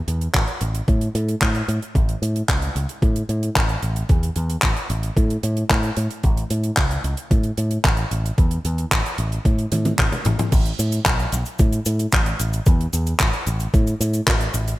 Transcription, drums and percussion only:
0.08 closed hi-hat medium
0.21 closed hi-hat soft
0.34 kick loud
0.34 clap loud
0.34 closed hi-hat medium
0.47 closed hi-hat soft
0.61 closed hi-hat loud
0.75 closed hi-hat medium
0.88 kick loud
0.88 closed hi-hat medium
1.01 closed hi-hat medium
1.15 closed hi-hat medium
1.28 closed hi-hat medium
1.41 kick loud
1.41 clap loud
1.41 closed hi-hat medium
1.55 closed hi-hat medium
1.69 closed hi-hat medium
1.82 closed hi-hat soft
1.95 kick loud
1.95 closed hi-hat medium
2.09 closed hi-hat medium
2.23 closed hi-hat loud
2.36 closed hi-hat soft
2.48 kick loud
2.48 clap loud
2.48 closed hi-hat medium
2.62 closed hi-hat medium
2.76 closed hi-hat medium
2.89 closed hi-hat medium
3.02 kick loud
3.02 closed hi-hat medium
3.16 closed hi-hat medium
3.29 closed hi-hat medium
3.43 closed hi-hat medium
3.56 kick loud
3.56 clap loud
3.56 closed hi-hat medium
3.69 closed hi-hat medium
3.82 closed hi-hat medium
3.96 closed hi-hat medium
4.09 kick loud
4.09 closed hi-hat medium
4.23 closed hi-hat medium
4.36 closed hi-hat medium
4.50 closed hi-hat medium
4.62 kick loud
4.62 clap loud
4.62 closed hi-hat medium
4.77 closed hi-hat medium
4.90 closed hi-hat medium
5.03 closed hi-hat medium
5.17 kick loud
5.17 closed hi-hat medium
5.30 closed hi-hat medium
5.43 closed hi-hat loud
5.57 closed hi-hat medium
5.70 kick loud
5.70 clap loud
5.70 closed hi-hat medium
5.83 closed hi-hat medium
5.96 closed hi-hat medium
6.11 closed hi-hat medium
6.23 kick loud
6.23 closed hi-hat medium
6.37 closed hi-hat medium
6.50 closed hi-hat medium
6.64 closed hi-hat soft
6.77 kick loud
6.77 clap loud
6.77 closed hi-hat medium
6.91 closed hi-hat medium
7.04 closed hi-hat medium
7.17 closed hi-hat medium
7.31 kick loud
7.31 closed hi-hat medium
7.43 closed hi-hat medium
7.57 closed hi-hat loud
7.71 closed hi-hat medium
7.84 kick loud
7.84 clap loud
7.84 closed hi-hat medium
7.97 closed hi-hat medium
8.11 closed hi-hat medium
8.26 closed hi-hat medium
8.38 kick loud
8.38 closed hi-hat medium
8.51 closed hi-hat medium
8.65 closed hi-hat loud
8.78 closed hi-hat medium
8.92 kick loud
8.92 clap loud
8.92 closed hi-hat medium
9.06 closed hi-hat medium
9.18 closed hi-hat medium
9.32 closed hi-hat medium
9.45 kick loud
9.45 closed hi-hat medium
9.59 closed hi-hat medium
9.72 closed hi-hat loud
9.72 high tom medium
9.85 closed hi-hat soft
9.85 high tom medium
9.99 kick loud
9.99 clap loud
9.99 closed hi-hat medium
9.99 mid tom medium
10.12 closed hi-hat medium
10.12 mid tom medium
10.25 closed hi-hat loud
10.25 mid tom medium
10.39 closed hi-hat medium
10.39 mid tom medium
10.52 kick loud
10.52 closed hi-hat medium
10.52 crash loud
10.52 cabasa medium
10.65 closed hi-hat medium
10.79 closed hi-hat loud
10.79 cabasa medium
10.92 closed hi-hat medium
10.92 cabasa soft
11.06 kick loud
11.06 clap loud
11.06 closed hi-hat medium
11.06 cabasa medium
11.19 closed hi-hat medium
11.32 closed hi-hat loud
11.32 cabasa medium
11.45 closed hi-hat medium
11.45 cabasa soft
11.59 kick loud
11.59 closed hi-hat medium
11.59 cabasa medium
11.72 closed hi-hat medium
11.72 cabasa soft
11.86 closed hi-hat loud
11.86 cabasa medium
11.99 closed hi-hat medium
11.99 cabasa soft
12.12 kick loud
12.12 clap loud
12.12 closed hi-hat medium
12.12 cabasa medium
12.26 closed hi-hat medium
12.39 closed hi-hat loud
12.39 cabasa medium
12.53 closed hi-hat medium
12.53 cabasa medium
12.66 kick loud
12.66 closed hi-hat medium
12.66 cabasa medium
12.81 closed hi-hat medium
12.93 closed hi-hat medium
12.93 cabasa medium
13.07 closed hi-hat medium
13.07 cabasa soft
13.20 kick loud
13.20 clap loud
13.20 closed hi-hat medium
13.20 cabasa medium
13.33 closed hi-hat medium
13.47 closed hi-hat medium
13.47 cabasa medium
13.60 closed hi-hat medium
13.60 cabasa medium
13.74 kick loud
13.74 closed hi-hat medium
13.74 cabasa medium
13.87 closed hi-hat medium
13.87 cabasa soft
14.01 closed hi-hat loud
14.01 cabasa medium
14.13 closed hi-hat medium
14.13 cabasa soft
14.27 kick loud
14.27 clap loud
14.27 closed hi-hat medium
14.27 cabasa soft
14.41 closed hi-hat medium
14.54 closed hi-hat loud
14.54 cabasa medium
14.68 closed hi-hat medium
14.68 cabasa soft

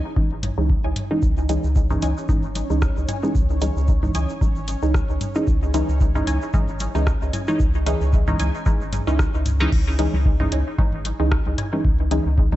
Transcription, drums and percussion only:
0.16 kick loud
0.16 high conga soft
0.43 closed hi-hat medium
0.43 mid tom medium
0.43 high conga medium
0.69 kick loud
0.69 high conga medium
0.96 closed hi-hat medium
0.96 mid tom medium
0.96 high conga soft
1.22 kick loud
1.22 high conga medium
1.22 shaker soft
1.37 shaker soft
1.49 closed hi-hat medium
1.49 high conga soft
1.49 shaker medium
1.64 shaker soft
1.76 kick loud
1.76 high conga medium
1.76 shaker soft
1.90 mid tom medium
1.90 shaker soft
2.02 closed hi-hat medium
2.02 high conga medium
2.02 shaker medium
2.18 shaker soft
2.29 kick loud
2.29 mid tom medium
2.29 high conga soft
2.29 shaker medium
2.43 shaker soft
2.55 closed hi-hat medium
2.55 high conga medium
2.55 shaker medium
2.70 shaker soft
2.82 kick loud
2.82 cross-stick medium
2.82 high conga medium
2.82 shaker medium
2.97 shaker soft
3.08 closed hi-hat medium
3.08 mid tom medium
3.08 high conga soft
3.08 shaker medium
3.23 shaker soft
3.35 kick loud
3.35 high conga medium
3.35 shaker medium
3.50 shaker soft
3.61 closed hi-hat medium
3.61 high conga medium
3.61 shaker medium
3.77 shaker soft
3.88 kick loud
3.88 high conga soft
3.88 shaker soft
4.03 mid tom medium
4.03 shaker soft
4.15 closed hi-hat medium
4.15 high conga medium
4.15 shaker medium
4.29 shaker soft
4.41 kick loud
4.41 high conga medium
4.41 shaker medium
4.56 shaker soft
4.68 closed hi-hat medium
4.68 high conga soft
4.68 shaker medium
4.82 shaker soft
4.94 kick loud
4.94 cross-stick medium
4.94 high conga medium
4.94 shaker soft
5.10 shaker soft
5.21 closed hi-hat medium
5.21 mid tom medium
5.21 high conga medium
5.21 shaker medium
5.35 shaker soft
5.47 kick loud
5.47 high conga soft
5.47 shaker soft
5.63 shaker soft
5.74 closed hi-hat medium
5.74 high conga medium
5.74 shaker medium
5.89 shaker soft
6.00 kick loud
6.00 high conga medium
6.00 shaker soft
6.15 mid tom medium
6.15 shaker soft
6.27 closed hi-hat medium
6.27 high conga soft
6.27 shaker medium
6.42 shaker soft
6.53 kick loud
6.53 mid tom medium
6.53 high conga medium
6.53 shaker soft
6.68 shaker soft
6.80 closed hi-hat medium
6.80 high conga medium
6.80 shaker medium
6.95 shaker soft
7.07 kick loud
7.07 cross-stick medium
7.07 high conga soft
7.07 shaker soft
7.22 shaker soft
7.33 closed hi-hat medium
7.33 mid tom medium
7.33 high conga medium
7.33 shaker medium
7.47 shaker soft
7.60 kick loud
7.60 high conga medium
7.60 shaker soft
7.74 shaker soft
7.86 closed hi-hat medium
7.86 high conga soft
7.86 shaker medium
8.01 shaker soft
8.13 kick loud
8.13 high conga medium
8.13 shaker soft
8.28 mid tom medium
8.28 shaker soft
8.39 closed hi-hat medium
8.39 high conga medium
8.39 shaker medium
8.55 shaker soft
8.66 kick loud
8.66 high conga soft
8.66 shaker medium
8.81 shaker soft
8.93 closed hi-hat medium
8.93 mid tom medium
8.93 high conga medium
8.93 shaker medium
9.07 shaker soft
9.19 kick loud
9.19 cross-stick medium
9.19 high conga medium
9.19 shaker soft
9.34 shaker soft
9.46 closed hi-hat medium
9.46 mid tom medium
9.46 high conga soft
9.46 shaker medium
9.60 shaker soft
9.72 kick loud
9.72 crash loud
9.72 high conga soft
9.99 closed hi-hat medium
10.13 high conga medium
10.25 kick loud
10.40 mid tom medium
10.40 high conga soft
10.52 closed hi-hat medium
10.78 kick loud
10.78 mid tom medium
10.78 high conga medium
11.05 closed hi-hat medium
11.05 high conga soft
11.32 kick loud
11.32 cross-stick medium
11.46 high conga medium
11.58 closed hi-hat medium
11.58 mid tom medium
11.73 high conga soft
11.85 kick loud
12.11 closed hi-hat medium
12.11 high conga medium
12.38 kick loud
12.38 high conga soft
12.52 mid tom medium

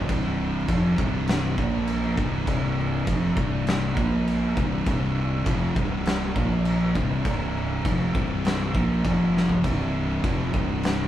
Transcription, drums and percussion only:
0.09 kick loud
0.09 crash medium
0.68 kick loud
0.68 crash medium
0.98 kick loud
1.27 snare loud
1.27 crash medium
1.58 kick loud
1.87 crash medium
2.17 kick loud
2.47 kick loud
2.47 crash medium
3.07 kick loud
3.07 crash medium
3.37 kick loud
3.67 snare loud
3.67 crash medium
3.97 kick loud
4.27 crash medium
4.57 kick loud
4.86 kick loud
4.86 crash medium
5.46 kick loud
5.46 crash medium
5.76 kick loud
6.06 snare loud
6.06 crash medium
6.36 kick loud
6.65 crash medium
6.95 kick loud
7.25 kick loud
7.25 crash medium
7.85 kick loud
7.85 crash medium
8.15 kick loud
8.45 snare loud
8.45 crash medium
8.75 kick loud
9.05 kick loud
9.05 crash medium
9.37 snare medium
9.49 floor tom medium
9.64 kick loud
9.64 crash medium
10.24 kick loud
10.24 crash medium
10.54 kick loud
10.83 snare loud
10.83 crash medium

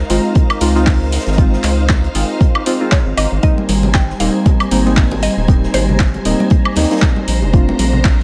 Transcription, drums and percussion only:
0.10 closed hi-hat medium
0.10 open hi-hat loud
0.35 kick loud
0.35 closed hi-hat medium
0.50 closed hi-hat soft
0.50 high woodblock medium
0.61 closed hi-hat medium
0.61 open hi-hat loud
0.75 snare medium
0.86 kick loud
0.86 snare loud
0.86 clap loud
0.86 open hi-hat medium
1.12 snare loud
1.12 closed hi-hat medium
1.12 open hi-hat loud
1.20 snare loud
1.20 closed hi-hat medium
1.26 snare medium
1.26 closed hi-hat medium
1.32 snare medium
1.32 closed hi-hat medium
1.38 kick loud
1.38 closed hi-hat loud
1.53 snare medium
1.64 clap medium
1.64 closed hi-hat medium
1.64 open hi-hat loud
1.89 kick loud
1.89 snare loud
1.89 clap loud
1.89 closed hi-hat medium
2.04 closed hi-hat soft
2.15 closed hi-hat medium
2.15 open hi-hat loud
2.41 kick loud
2.41 closed hi-hat medium
2.55 high woodblock medium
2.66 closed hi-hat medium
2.66 open hi-hat loud
2.92 kick loud
2.92 snare loud
2.92 clap loud
2.92 closed hi-hat medium
3.18 closed hi-hat medium
3.18 open hi-hat loud
3.18 high woodblock medium
3.43 kick loud
3.43 closed hi-hat loud
3.58 muted conga medium
3.69 closed hi-hat medium
3.69 open hi-hat loud
3.69 high conga loud
3.83 muted conga medium
3.83 low conga medium
3.94 kick loud
3.94 snare loud
3.94 clap loud
3.94 closed hi-hat medium
4.10 snare soft
4.20 closed hi-hat medium
4.20 open hi-hat loud
4.20 muted conga medium
4.46 kick loud
4.46 closed hi-hat medium
4.46 muted conga medium
4.46 high conga medium
4.60 closed hi-hat soft
4.60 high woodblock medium
4.71 closed hi-hat medium
4.71 open hi-hat loud
4.85 snare medium
4.85 muted conga medium
4.97 kick loud
4.97 snare loud
4.97 clap loud
4.97 open hi-hat medium
5.11 muted conga medium
5.11 high conga medium
5.23 closed hi-hat medium
5.23 open hi-hat loud
5.48 kick loud
5.48 closed hi-hat loud
5.48 muted conga medium
5.63 snare soft
5.74 closed hi-hat medium
5.74 open hi-hat loud
5.74 muted conga medium
5.74 high conga medium
5.89 low conga medium
5.99 kick loud
5.99 snare loud
5.99 clap loud
5.99 closed hi-hat medium
6.14 closed hi-hat soft
6.14 muted conga medium
6.25 closed hi-hat medium
6.25 open hi-hat loud
6.40 muted conga medium
6.50 kick loud
6.50 closed hi-hat medium
6.50 high conga medium
6.65 high woodblock medium
6.76 snare medium
6.76 closed hi-hat medium
6.76 open hi-hat loud
6.76 muted conga medium
6.84 snare medium
6.84 closed hi-hat medium
6.91 snare medium
6.91 closed hi-hat medium
6.97 snare medium
6.97 closed hi-hat medium
7.02 kick loud
7.02 snare loud
7.02 clap loud
7.02 muted conga medium
7.16 high conga loud
7.28 closed hi-hat medium
7.28 open hi-hat loud
7.42 muted conga soft
7.53 kick loud
7.53 closed hi-hat medium
7.69 muted conga medium
7.79 closed hi-hat medium
7.79 open hi-hat loud
7.79 high conga medium
7.93 low conga medium
8.04 kick loud
8.04 snare loud
8.04 clap loud
8.04 closed hi-hat medium
8.04 muted conga medium
8.20 snare soft

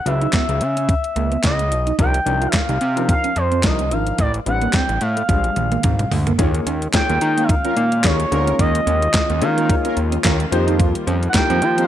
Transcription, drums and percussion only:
0.06 closed hi-hat medium
0.21 closed hi-hat soft
0.33 kick loud
0.33 snare loud
0.33 clap medium
0.33 closed hi-hat medium
0.49 closed hi-hat soft
0.61 closed hi-hat medium
0.77 closed hi-hat medium
0.89 kick loud
0.89 closed hi-hat loud
1.04 closed hi-hat medium
1.16 closed hi-hat medium
1.32 closed hi-hat soft
1.43 kick loud
1.43 snare loud
1.43 clap medium
1.43 closed hi-hat loud
1.59 closed hi-hat medium
1.72 closed hi-hat medium
1.87 closed hi-hat soft
1.99 kick loud
1.99 closed hi-hat loud
2.14 closed hi-hat medium
2.27 closed hi-hat medium
2.42 closed hi-hat soft
2.53 kick loud
2.53 snare loud
2.53 clap medium
2.53 closed hi-hat medium
2.69 closed hi-hat soft
2.81 closed hi-hat medium
2.97 closed hi-hat medium
3.09 kick loud
3.09 closed hi-hat loud
3.24 closed hi-hat medium
3.36 closed hi-hat medium
3.52 closed hi-hat soft
3.63 kick loud
3.63 snare loud
3.63 clap medium
3.63 closed hi-hat loud
3.79 closed hi-hat medium
3.91 closed hi-hat medium
4.07 closed hi-hat soft
4.18 kick loud
4.18 closed hi-hat loud
4.34 closed hi-hat medium
4.46 closed hi-hat medium
4.62 closed hi-hat soft
4.73 kick loud
4.73 snare loud
4.73 clap medium
4.73 closed hi-hat medium
4.89 closed hi-hat soft
5.01 closed hi-hat medium
5.17 closed hi-hat medium
5.29 kick loud
5.29 closed hi-hat loud
5.29 high tom medium
5.44 closed hi-hat soft
5.44 high tom soft
5.56 closed hi-hat medium
5.56 mid tom medium
5.72 closed hi-hat soft
5.72 mid tom medium
5.83 kick loud
5.83 closed hi-hat loud
5.83 mid tom medium
5.99 closed hi-hat medium
5.99 mid tom medium
6.12 floor tom medium
6.12 open hi-hat medium
6.27 closed hi-hat soft
6.27 floor tom medium
6.39 kick loud
6.39 closed hi-hat loud
6.54 closed hi-hat medium
6.67 closed hi-hat medium
6.82 closed hi-hat medium
6.94 kick loud
6.94 snare loud
6.94 clap medium
6.94 closed hi-hat medium
7.10 closed hi-hat soft
7.21 closed hi-hat medium
7.38 closed hi-hat medium
7.49 kick loud
7.49 closed hi-hat loud
7.65 closed hi-hat medium
7.77 closed hi-hat medium
7.92 closed hi-hat soft
8.04 kick loud
8.04 snare loud
8.04 clap loud
8.04 closed hi-hat loud
8.20 closed hi-hat medium
8.32 closed hi-hat medium
8.47 closed hi-hat medium
8.59 kick loud
8.59 closed hi-hat loud
8.75 closed hi-hat medium
8.87 closed hi-hat medium
9.02 closed hi-hat soft
9.14 kick loud
9.14 snare loud
9.14 clap medium
9.14 closed hi-hat medium
9.30 closed hi-hat soft
9.42 closed hi-hat medium
9.58 closed hi-hat medium
9.70 kick loud
9.70 closed hi-hat loud
9.85 closed hi-hat medium
9.97 closed hi-hat medium
10.12 closed hi-hat medium
10.24 kick loud
10.24 snare loud
10.24 clap loud
10.24 closed hi-hat loud
10.40 closed hi-hat medium
10.52 closed hi-hat medium
10.68 closed hi-hat medium
10.80 kick loud
10.80 closed hi-hat loud
10.95 closed hi-hat medium
11.07 closed hi-hat medium
11.23 closed hi-hat soft
11.34 kick loud
11.34 snare loud
11.34 clap medium
11.34 closed hi-hat medium
11.50 closed hi-hat soft
11.62 closed hi-hat medium
11.78 closed hi-hat medium

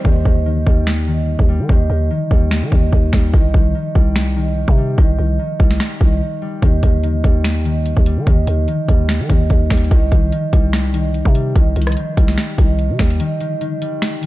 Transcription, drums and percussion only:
0.05 kick loud
0.25 kick medium
0.67 kick loud
0.87 finger snap medium
0.87 snare loud
1.39 kick loud
1.69 kick loud
2.31 kick loud
2.51 finger snap medium
2.51 snare loud
2.72 kick medium
2.93 kick medium
3.13 finger snap medium
3.13 kick medium
3.13 snare medium
3.34 kick loud
3.54 kick loud
3.95 kick loud
4.16 finger snap medium
4.16 snare loud
4.68 kick loud
4.98 kick loud
5.60 kick loud
5.71 snare medium
5.80 finger snap medium
5.80 snare loud
6.01 kick medium
6.62 kick loud
6.62 closed hi-hat medium
6.83 kick loud
6.83 closed hi-hat medium
7.04 closed hi-hat medium
7.24 kick loud
7.24 closed hi-hat medium
7.44 finger snap medium
7.44 snare loud
7.44 closed hi-hat medium
7.65 closed hi-hat medium
7.86 closed hi-hat medium
7.97 kick loud
8.06 closed hi-hat medium
8.27 kick loud
8.27 closed hi-hat medium
8.47 closed hi-hat medium
8.68 closed hi-hat medium
8.89 kick loud
8.89 closed hi-hat medium
9.09 finger snap loud
9.09 snare loud
9.09 closed hi-hat medium
9.30 kick medium
9.30 closed hi-hat medium
9.50 kick medium
9.50 closed hi-hat medium
9.70 finger snap medium
9.70 kick medium
9.70 snare medium
9.70 closed hi-hat medium
9.70 open hi-hat medium
9.77 closed hi-hat medium
9.84 closed hi-hat medium
9.91 kick loud
9.91 closed hi-hat medium
10.12 kick medium
10.12 closed hi-hat medium
10.32 closed hi-hat medium
10.53 kick loud
10.53 closed hi-hat medium
10.73 finger snap medium
10.73 snare loud
10.73 closed hi-hat medium
10.94 closed hi-hat medium
11.14 closed hi-hat medium
11.25 kick loud
11.35 closed hi-hat medium
11.56 kick loud
11.56 closed hi-hat medium
11.76 closed hi-hat soft
11.82 closed hi-hat medium
11.87 cross-stick loud
11.87 closed hi-hat medium
11.92 closed hi-hat medium
11.97 closed hi-hat medium
12.17 kick loud
12.17 closed hi-hat medium
12.28 snare medium
12.38 finger snap medium
12.38 snare loud
12.38 closed hi-hat medium
12.58 kick loud
12.58 closed hi-hat medium
12.79 closed hi-hat medium
12.99 finger snap medium
12.99 kick loud
12.99 snare medium
12.99 closed hi-hat soft
12.99 open hi-hat medium
13.10 closed hi-hat medium
13.20 closed hi-hat medium
13.41 closed hi-hat medium
13.61 closed hi-hat medium
13.82 closed hi-hat medium
14.02 finger snap medium
14.02 snare loud
14.02 closed hi-hat medium
14.23 closed hi-hat medium

